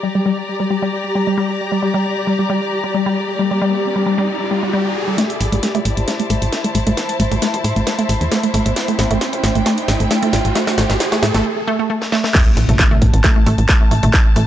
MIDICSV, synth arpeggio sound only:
0, 0, Header, 1, 2, 480
1, 0, Start_track
1, 0, Tempo, 447761
1, 1715, Time_signature, 4, 2, 24, 8
1, 15510, End_track
2, 0, Start_track
2, 0, Title_t, "Synth arpeggio sound"
2, 0, Program_c, 0, 84
2, 35, Note_on_c, 0, 55, 78
2, 72, Note_off_c, 0, 55, 0
2, 162, Note_on_c, 0, 55, 76
2, 244, Note_off_c, 0, 55, 0
2, 275, Note_on_c, 0, 55, 101
2, 312, Note_off_c, 0, 55, 0
2, 642, Note_on_c, 0, 55, 77
2, 675, Note_off_c, 0, 55, 0
2, 755, Note_on_c, 0, 55, 81
2, 848, Note_off_c, 0, 55, 0
2, 882, Note_on_c, 0, 55, 98
2, 915, Note_off_c, 0, 55, 0
2, 1236, Note_on_c, 0, 55, 84
2, 1272, Note_off_c, 0, 55, 0
2, 1362, Note_on_c, 0, 55, 76
2, 1445, Note_off_c, 0, 55, 0
2, 1475, Note_on_c, 0, 55, 103
2, 1512, Note_off_c, 0, 55, 0
2, 1842, Note_on_c, 0, 55, 75
2, 1875, Note_off_c, 0, 55, 0
2, 1955, Note_on_c, 0, 55, 81
2, 2048, Note_off_c, 0, 55, 0
2, 2081, Note_on_c, 0, 55, 99
2, 2115, Note_off_c, 0, 55, 0
2, 2435, Note_on_c, 0, 55, 75
2, 2472, Note_off_c, 0, 55, 0
2, 2562, Note_on_c, 0, 55, 73
2, 2644, Note_off_c, 0, 55, 0
2, 2675, Note_on_c, 0, 55, 99
2, 2712, Note_off_c, 0, 55, 0
2, 3043, Note_on_c, 0, 55, 76
2, 3075, Note_off_c, 0, 55, 0
2, 3156, Note_on_c, 0, 55, 84
2, 3248, Note_off_c, 0, 55, 0
2, 3283, Note_on_c, 0, 55, 103
2, 3315, Note_off_c, 0, 55, 0
2, 3636, Note_on_c, 0, 55, 80
2, 3672, Note_off_c, 0, 55, 0
2, 3763, Note_on_c, 0, 55, 78
2, 3845, Note_off_c, 0, 55, 0
2, 3876, Note_on_c, 0, 55, 103
2, 3912, Note_off_c, 0, 55, 0
2, 4242, Note_on_c, 0, 55, 76
2, 4275, Note_off_c, 0, 55, 0
2, 4356, Note_on_c, 0, 55, 73
2, 4448, Note_off_c, 0, 55, 0
2, 4482, Note_on_c, 0, 55, 100
2, 4515, Note_off_c, 0, 55, 0
2, 4835, Note_on_c, 0, 55, 77
2, 4872, Note_off_c, 0, 55, 0
2, 4961, Note_on_c, 0, 55, 78
2, 5044, Note_off_c, 0, 55, 0
2, 5075, Note_on_c, 0, 55, 103
2, 5112, Note_off_c, 0, 55, 0
2, 5441, Note_on_c, 0, 55, 77
2, 5475, Note_off_c, 0, 55, 0
2, 5554, Note_on_c, 0, 57, 103
2, 5592, Note_off_c, 0, 57, 0
2, 5922, Note_on_c, 0, 57, 74
2, 5955, Note_off_c, 0, 57, 0
2, 6035, Note_on_c, 0, 57, 81
2, 6128, Note_off_c, 0, 57, 0
2, 6161, Note_on_c, 0, 57, 102
2, 6194, Note_off_c, 0, 57, 0
2, 6515, Note_on_c, 0, 57, 83
2, 6552, Note_off_c, 0, 57, 0
2, 6642, Note_on_c, 0, 57, 75
2, 6725, Note_off_c, 0, 57, 0
2, 6755, Note_on_c, 0, 57, 98
2, 6792, Note_off_c, 0, 57, 0
2, 7122, Note_on_c, 0, 57, 78
2, 7155, Note_off_c, 0, 57, 0
2, 7236, Note_on_c, 0, 57, 77
2, 7328, Note_off_c, 0, 57, 0
2, 7362, Note_on_c, 0, 57, 105
2, 7395, Note_off_c, 0, 57, 0
2, 7715, Note_on_c, 0, 57, 81
2, 7752, Note_off_c, 0, 57, 0
2, 7843, Note_on_c, 0, 57, 73
2, 7925, Note_off_c, 0, 57, 0
2, 7955, Note_on_c, 0, 57, 100
2, 7992, Note_off_c, 0, 57, 0
2, 8322, Note_on_c, 0, 57, 77
2, 8355, Note_off_c, 0, 57, 0
2, 8435, Note_on_c, 0, 57, 84
2, 8528, Note_off_c, 0, 57, 0
2, 8562, Note_on_c, 0, 57, 101
2, 8595, Note_off_c, 0, 57, 0
2, 8915, Note_on_c, 0, 57, 84
2, 8952, Note_off_c, 0, 57, 0
2, 9042, Note_on_c, 0, 57, 78
2, 9125, Note_off_c, 0, 57, 0
2, 9156, Note_on_c, 0, 57, 100
2, 9192, Note_off_c, 0, 57, 0
2, 9522, Note_on_c, 0, 57, 80
2, 9555, Note_off_c, 0, 57, 0
2, 9636, Note_on_c, 0, 57, 78
2, 9728, Note_off_c, 0, 57, 0
2, 9763, Note_on_c, 0, 57, 100
2, 9795, Note_off_c, 0, 57, 0
2, 10115, Note_on_c, 0, 57, 76
2, 10152, Note_off_c, 0, 57, 0
2, 10242, Note_on_c, 0, 57, 78
2, 10324, Note_off_c, 0, 57, 0
2, 10355, Note_on_c, 0, 57, 105
2, 10392, Note_off_c, 0, 57, 0
2, 10722, Note_on_c, 0, 57, 77
2, 10755, Note_off_c, 0, 57, 0
2, 10835, Note_on_c, 0, 57, 86
2, 10928, Note_off_c, 0, 57, 0
2, 10961, Note_on_c, 0, 57, 102
2, 10995, Note_off_c, 0, 57, 0
2, 11315, Note_on_c, 0, 57, 84
2, 11352, Note_off_c, 0, 57, 0
2, 11441, Note_on_c, 0, 57, 80
2, 11524, Note_off_c, 0, 57, 0
2, 11554, Note_on_c, 0, 57, 103
2, 11591, Note_off_c, 0, 57, 0
2, 11922, Note_on_c, 0, 57, 77
2, 11955, Note_off_c, 0, 57, 0
2, 12035, Note_on_c, 0, 57, 74
2, 12128, Note_off_c, 0, 57, 0
2, 12162, Note_on_c, 0, 57, 104
2, 12195, Note_off_c, 0, 57, 0
2, 12515, Note_on_c, 0, 57, 110
2, 12608, Note_off_c, 0, 57, 0
2, 12642, Note_on_c, 0, 57, 82
2, 12724, Note_off_c, 0, 57, 0
2, 12755, Note_on_c, 0, 57, 88
2, 12817, Note_off_c, 0, 57, 0
2, 12995, Note_on_c, 0, 57, 102
2, 13088, Note_off_c, 0, 57, 0
2, 13122, Note_on_c, 0, 57, 78
2, 13177, Note_off_c, 0, 57, 0
2, 13235, Note_on_c, 0, 57, 106
2, 13272, Note_off_c, 0, 57, 0
2, 13602, Note_on_c, 0, 57, 77
2, 13635, Note_off_c, 0, 57, 0
2, 13715, Note_on_c, 0, 57, 82
2, 13808, Note_off_c, 0, 57, 0
2, 13841, Note_on_c, 0, 57, 101
2, 13875, Note_off_c, 0, 57, 0
2, 14195, Note_on_c, 0, 57, 88
2, 14232, Note_off_c, 0, 57, 0
2, 14322, Note_on_c, 0, 57, 79
2, 14405, Note_off_c, 0, 57, 0
2, 14434, Note_on_c, 0, 57, 105
2, 14472, Note_off_c, 0, 57, 0
2, 14802, Note_on_c, 0, 57, 79
2, 14835, Note_off_c, 0, 57, 0
2, 14914, Note_on_c, 0, 57, 78
2, 15007, Note_off_c, 0, 57, 0
2, 15041, Note_on_c, 0, 57, 102
2, 15074, Note_off_c, 0, 57, 0
2, 15394, Note_on_c, 0, 57, 85
2, 15431, Note_off_c, 0, 57, 0
2, 15510, End_track
0, 0, End_of_file